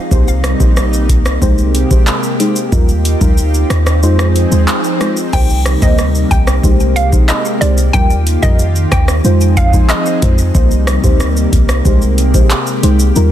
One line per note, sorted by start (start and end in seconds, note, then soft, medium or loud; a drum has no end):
0.00 0.10 F3 medium
0.00 0.10 C4 medium
0.00 0.10 D#4 medium
0.00 0.10 G#4 medium
0.11 0.54 C2 loud
0.11 1.41 C3 medium
0.11 1.41 G3 medium
0.11 0.27 A#3 medium
0.11 3.99 A#3 medium
0.11 0.27 D#4 medium
0.11 1.41 D#4 medium
0.11 0.27 G4 medium
0.11 0.27 C5 loud
0.11 kick loud
0.11 shaker medium
0.28 shaker medium
0.44 cross-stick loud
0.44 closed hi-hat medium
0.44 shaker medium
0.60 1.11 A#1 medium
0.60 0.76 A#3 medium
0.60 0.76 D#4 medium
0.60 0.76 G4 medium
0.60 0.76 C5 medium
0.60 kick loud
0.60 shaker medium
0.77 cross-stick medium
0.77 shaker medium
0.93 shaker medium
1.09 1.38 C2 loud
1.09 kick medium
1.09 closed hi-hat medium
1.09 shaker soft
1.26 cross-stick loud
1.26 shaker medium
1.41 1.85 C2 loud
1.41 2.71 C3 medium
1.41 1.87 G#3 loud
1.41 2.71 G#3 medium
1.41 1.87 D#4 medium
1.41 1.87 G4 medium
1.41 2.71 G4 medium
1.41 1.87 C5 loud
1.41 kick medium
1.41 shaker medium
1.58 shaker soft
1.75 closed hi-hat medium
1.75 shaker soft
1.90 2.05 A#1 medium
1.90 2.07 G#3 medium
1.90 2.07 D#4 medium
1.90 2.07 G4 medium
1.90 2.07 C5 medium
1.90 kick medium
1.90 shaker medium
2.07 clap loud
2.07 shaker medium
2.23 shaker soft
2.39 2.56 G#3 medium
2.39 2.56 D#4 medium
2.39 2.56 G4 medium
2.39 2.56 C5 medium
2.39 closed hi-hat medium
2.39 shaker soft
2.56 shaker medium
2.72 3.15 D#2 loud
2.72 2.88 G3 loud
2.72 2.88 D#4 medium
2.72 4.01 D#4 medium
2.72 2.88 F4 medium
2.72 4.02 F4 medium
2.72 4.01 G4 medium
2.72 2.89 A#4 loud
2.72 kick loud
2.72 swell medium
2.72 shaker medium
2.89 shaker medium
3.05 closed hi-hat medium
3.05 shaker medium
3.21 3.64 D2 loud
3.21 3.37 G3 medium
3.21 3.37 D#4 medium
3.21 3.37 F4 medium
3.21 3.37 A#4 medium
3.21 kick medium
3.21 shaker medium
3.38 shaker medium
3.54 shaker medium
3.70 4.04 D#2 medium
3.70 cross-stick loud
3.70 closed hi-hat medium
3.70 shaker soft
3.87 cross-stick loud
3.87 shaker medium
4.02 4.46 F2 loud
4.02 5.32 F3 medium
4.02 4.48 G#3 loud
4.02 5.32 C4 medium
4.02 4.48 D#4 medium
4.02 5.32 D#4 medium
4.02 4.48 F4 medium
4.02 5.32 G#4 medium
4.02 4.48 C5 loud
4.02 shaker medium
4.19 cross-stick loud
4.19 shaker soft
4.36 closed hi-hat medium
4.36 shaker soft
4.51 4.66 D#2 medium
4.51 4.68 G#3 medium
4.51 4.68 D#4 medium
4.51 4.68 F4 medium
4.51 4.68 C5 medium
4.51 shaker medium
4.68 clap loud
4.68 shaker medium
4.84 shaker soft
5.00 5.16 G#3 medium
5.00 5.17 D#4 medium
5.00 5.17 F4 medium
5.00 5.17 C5 medium
5.00 cross-stick loud
5.00 closed hi-hat medium
5.00 shaker soft
5.17 shaker medium
5.33 5.76 C2 loud
5.33 7.91 C3 medium
5.33 6.62 G3 medium
5.33 5.49 A#3 loud
5.33 9.21 A#3 medium
5.33 5.49 D#4 medium
5.33 6.62 D#4 medium
5.33 5.49 G4 medium
5.33 5.49 C5 loud
5.33 5.61 G5 loud
5.33 kick loud
5.33 crash loud
5.33 shaker medium
5.50 shaker medium
5.66 cross-stick loud
5.66 closed hi-hat medium
5.66 shaker medium
5.82 6.25 D2 medium
5.82 5.98 A#3 medium
5.82 5.98 D#4 medium
5.82 5.98 G4 medium
5.82 5.98 C5 medium
5.82 5.96 D#5 medium
5.82 kick medium
5.82 shaker medium
5.98 cross-stick medium
5.98 shaker medium
6.15 shaker medium
6.31 6.60 C2 medium
6.31 6.45 G5 medium
6.31 kick medium
6.31 closed hi-hat medium
6.31 shaker soft
6.47 cross-stick medium
6.47 shaker medium
6.63 7.21 C2 loud
6.63 7.08 G#3 loud
6.63 7.93 G#3 medium
6.63 7.09 D#4 medium
6.63 7.93 G4 medium
6.63 7.09 G4 medium
6.63 7.09 C5 loud
6.63 kick medium
6.63 shaker medium
6.80 shaker soft
6.96 7.10 F5 medium
6.96 closed hi-hat medium
6.96 shaker soft
7.12 7.28 G#3 medium
7.12 7.29 D#4 medium
7.12 7.29 G4 medium
7.12 7.29 C5 medium
7.12 kick medium
7.12 shaker medium
7.29 7.43 D#5 medium
7.29 clap loud
7.29 shaker medium
7.45 shaker soft
7.61 7.90 C2 medium
7.61 7.77 G#3 medium
7.61 7.77 D#4 medium
7.61 7.78 G4 medium
7.61 7.78 C5 medium
7.61 7.75 D5 medium
7.61 closed hi-hat medium
7.61 shaker soft
7.78 shaker medium
7.93 8.37 D#2 loud
7.93 9.23 D#3 medium
7.93 8.10 G3 medium
7.93 8.10 D#4 medium
7.93 9.23 F4 medium
7.93 8.10 F4 medium
7.93 9.23 G4 medium
7.93 8.10 A#4 loud
7.93 8.22 G5 loud
7.93 kick loud
7.93 shaker medium
8.10 shaker medium
8.27 closed hi-hat medium
8.27 shaker medium
8.43 8.86 F2 medium
8.43 8.59 G3 medium
8.43 8.59 D#4 medium
8.43 8.59 F4 medium
8.43 8.59 A#4 medium
8.43 8.57 D#5 medium
8.43 kick loud
8.43 shaker medium
8.59 shaker medium
8.76 shaker medium
8.92 9.20 D#2 loud
8.92 9.06 G5 medium
8.92 kick medium
8.92 cross-stick loud
8.92 closed hi-hat medium
8.92 shaker soft
9.08 cross-stick loud
9.08 shaker medium
9.24 9.82 F2 loud
9.24 10.54 F3 medium
9.24 9.69 G#3 loud
9.24 10.54 C4 medium
9.24 11.83 D#4 medium
9.24 9.69 D#4 medium
9.24 9.70 F4 medium
9.24 10.54 G#4 medium
9.24 9.70 C5 loud
9.24 shaker medium
9.41 shaker soft
9.57 9.71 F5 medium
9.57 kick medium
9.57 closed hi-hat medium
9.57 shaker soft
9.73 9.89 G#3 medium
9.73 9.89 D#4 medium
9.73 9.89 F4 medium
9.73 9.90 C5 medium
9.73 kick medium
9.73 shaker medium
9.89 10.36 D#5 medium
9.89 clap loud
9.89 shaker medium
10.06 shaker soft
10.22 10.51 F2 medium
10.22 10.38 G#3 medium
10.22 10.38 D#4 medium
10.22 10.38 F4 medium
10.22 10.38 C5 medium
10.22 kick medium
10.22 closed hi-hat medium
10.22 shaker medium
10.38 shaker medium
10.54 10.98 C2 loud
10.54 11.84 C3 medium
10.54 11.84 G3 medium
10.54 10.71 A#3 loud
10.54 13.13 A#3 medium
10.54 10.71 D#4 medium
10.54 10.71 G4 medium
10.54 10.71 C5 loud
10.54 kick loud
10.54 shaker medium
10.71 shaker medium
10.87 cross-stick loud
10.87 closed hi-hat medium
10.87 shaker medium
11.03 11.47 D2 medium
11.03 11.20 A#3 medium
11.03 11.20 D#4 medium
11.03 11.20 G4 medium
11.03 11.20 C5 medium
11.03 kick medium
11.03 shaker medium
11.20 cross-stick medium
11.20 shaker medium
11.37 shaker medium
11.53 11.81 C2 medium
11.53 kick medium
11.53 closed hi-hat medium
11.53 shaker soft
11.69 cross-stick loud
11.69 shaker medium
11.85 12.43 C2 loud
11.85 13.14 C3 medium
11.85 12.30 G#3 loud
11.85 13.14 G#3 medium
11.85 12.30 D#4 medium
11.85 13.32 G4 medium
11.85 12.30 G4 medium
11.85 12.30 C5 loud
11.85 kick medium
11.85 shaker medium
12.02 shaker soft
12.18 closed hi-hat medium
12.18 shaker soft
12.34 12.50 G#3 medium
12.34 12.50 D#4 medium
12.34 12.50 G4 medium
12.34 12.50 C5 medium
12.34 kick medium
12.34 shaker medium
12.50 clap loud
12.50 shaker medium
12.67 shaker medium
12.83 13.12 C2 medium
12.83 12.99 G#3 medium
12.83 12.99 D#4 medium
12.83 12.99 G4 medium
12.83 12.99 C5 medium
12.83 closed hi-hat medium
12.83 shaker medium
12.99 shaker medium
13.15 13.32 D#2 loud
13.15 13.32 D#3 medium
13.15 13.32 G3 loud
13.15 13.32 A#3 medium
13.15 13.32 D#4 medium
13.15 13.32 F4 medium
13.15 13.32 A#4 loud
13.15 shaker medium